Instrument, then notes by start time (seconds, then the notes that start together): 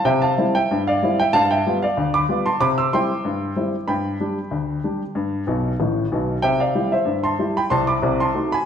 grand piano
0.05 C3 E5 G5
0.22 F5 A5
0.38 G3 C4 E4
0.55 E5 G5
0.71 G2
0.87 D5 F5
1.03 G3 C4 E4
1.20 E5 G5
1.33 G2 F5 A5
1.51 E5 G5
1.66 G3 B3 F4
1.82 D5 F5
1.97 D2
2.14 B5 D6
2.29 G3 B3 F4
2.46 A5 C6
2.60 C3 B5 D6
2.78 C6 E6
2.93 G3 C4 E4 G5 C6
3.25 G2
3.56 G3 C4 E4
3.88 G2 G5 B5
4.20 G3 D4 G4
4.51 D2
4.84 G3 D4 G4
5.15 G2
5.47 B1 B2
5.80 A1 A2
6.12 B1 B2
6.42 C3 E5 G5
6.60 D5 F5
6.75 G3 E4 G4
6.92 C5 E5
7.05 G2
7.24 A5 C6
7.39 G3 E4 G4
7.57 G5 B5
7.70 C2 C3 A5 C6
7.87 B5 D6
8.02 C2 C3
8.20 A5 C6
8.35 A3 D#4 F#4
8.52 G#5 B5